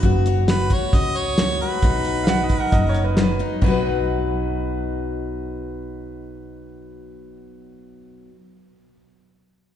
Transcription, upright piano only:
2.23 2.26 F5 medium
2.28 2.42 F#5 medium
2.43 2.57 D#5 medium
2.60 2.73 F#5 medium
2.72 2.87 D#5 medium
2.89 3.03 C#5 medium
3.04 3.18 B4 medium
3.15 3.17 A#4 medium
3.19 3.51 B4 medium
3.64 8.27 B4 medium

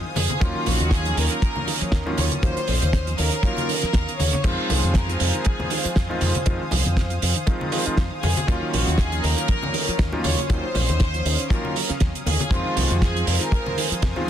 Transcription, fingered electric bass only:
0.16 0.26 F2 medium
0.41 0.52 D#2 loud
0.67 0.77 A#1 medium
0.81 1.12 D#2 loud
1.17 1.27 D#2 loud
1.81 muted fingered electric bass stroke soft
1.92 2.02 D#2 loud
2.18 2.28 D#2 medium
2.43 2.53 D#2 loud
2.68 2.78 A#1 medium
2.82 3.14 D#2 loud
3.19 3.29 D#2 loud
3.83 muted fingered electric bass stroke soft
3.95 4.05 D#2 loud
4.20 4.30 D#2 medium
4.44 4.55 F2 loud
4.70 4.80 C2 medium
4.84 5.15 F2 loud
5.20 5.30 F2 loud
5.85 muted fingered electric bass stroke soft
5.97 6.06 F2 medium
6.21 6.31 F2 medium
6.47 6.57 F2 loud
6.72 6.82 C2 medium
6.86 7.17 F2 loud
7.22 7.32 F2 loud
7.87 muted fingered electric bass stroke soft
7.98 8.08 F2 loud
8.23 8.33 F2 medium
8.48 8.58 D#2 loud
8.74 8.84 A#1 medium
8.87 9.19 D#2 loud
9.24 9.34 D#2 loud
9.88 muted fingered electric bass stroke soft
9.99 10.09 D#2 loud
10.25 10.35 D#2 medium
10.50 10.60 D#2 loud
10.75 10.85 A#1 medium
10.89 11.21 D#2 loud
11.25 11.35 D#2 loud
11.90 muted fingered electric bass stroke soft
12.01 12.11 D#2 loud
12.26 12.36 D#2 medium
12.51 12.61 F2 loud
12.77 12.87 C2 medium
12.91 13.22 F2 loud
13.27 13.37 F2 loud
13.91 muted fingered electric bass stroke soft
14.03 14.13 F2 loud

